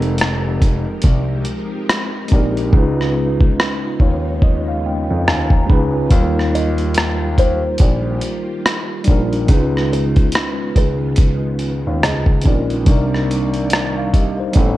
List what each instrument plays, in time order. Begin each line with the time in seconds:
Already playing: grand piano F1, string machine F3 G#3 C4 D#4 G4 A#4, tine electric piano G#3 C4 D#4 G4 A#4
0.02 closed hi-hat
0.18 cross-stick, closed hi-hat
0.62 kick, closed hi-hat
1.02 grand piano C2, kick, closed hi-hat
1.45 closed hi-hat
1.89 cross-stick, closed hi-hat
2.28 tine electric piano G#3 C4 D#4, kick, closed hi-hat
2.33 grand piano A#1, tine electric piano G4 A#4
2.57 closed hi-hat
2.71 grand piano C#2, string machine C#3 G#3 B3 F4, tine electric piano G#3 C#4 D#4, kick
2.76 tine electric piano F4 B4
3.01 cross-stick
3.40 kick
3.60 cross-stick
4.00 grand piano D#2, tine electric piano C#5, kick
4.42 tine electric piano D#5, kick
4.68 tine electric piano F5
4.86 tine electric piano G5
5.11 grand piano F2
5.28 grand piano D#2, tine electric piano G#5, cross-stick
5.50 tine electric piano A#5, kick
5.66 tine electric piano G#3 C#4 D#4 B5, kick
5.70 grand piano C#2, tine electric piano F4 B4
6.09 grand piano D#2, string machine D#3 A#3 G4, tine electric piano F#3 A#3 D#4, kick, closed hi-hat
6.14 tine electric piano G3 F4 A#4
6.39 cross-stick
6.55 kalimba D#5, closed hi-hat
6.78 closed hi-hat
6.94 cross-stick, closed hi-hat
7.38 kalimba C5, kick, closed hi-hat
7.78 grand piano A#1, kick, closed hi-hat
8.21 closed hi-hat
8.66 cross-stick, closed hi-hat
9.04 tine electric piano G3 D4 D#4, kick, closed hi-hat
9.09 grand piano A#1, tine electric piano F4 A#4
9.33 closed hi-hat
9.46 grand piano C#2, string machine C#3 D#3 G#3 B3, tine electric piano G#3 C#4 D#4, kick, closed hi-hat
9.52 tine electric piano E4 B4
9.58 tine electric piano F4
9.77 cross-stick
9.93 kalimba B4, closed hi-hat
10.16 kick, closed hi-hat
10.32 cross-stick, closed hi-hat
10.76 grand piano C#2, kalimba B4, kick, closed hi-hat
11.16 kick, closed hi-hat
11.59 closed hi-hat
11.87 grand piano D#2
12.03 grand piano C#2, kalimba D#5, cross-stick, closed hi-hat
12.26 kick
12.42 tine electric piano G#3 C#4 D#4, closed hi-hat
12.46 grand piano A#1, tine electric piano F4 A#4, kick
12.70 closed hi-hat
12.85 grand piano C2, string machine C3 G3 A#3 D5, tine electric piano G3 C4 D4, kick, closed hi-hat
12.90 tine electric piano D#4 A#4
13.14 cross-stick
13.31 closed hi-hat
13.54 closed hi-hat
13.70 cross-stick, closed hi-hat
13.97 tine electric piano F5
14.14 tine electric piano G4 D#5, kick, closed hi-hat
14.40 tine electric piano D#4 C5
14.53 grand piano A1, tine electric piano G3 B3 C#4, string machine A3 C#4, kick, closed hi-hat
14.58 tine electric piano E4 A4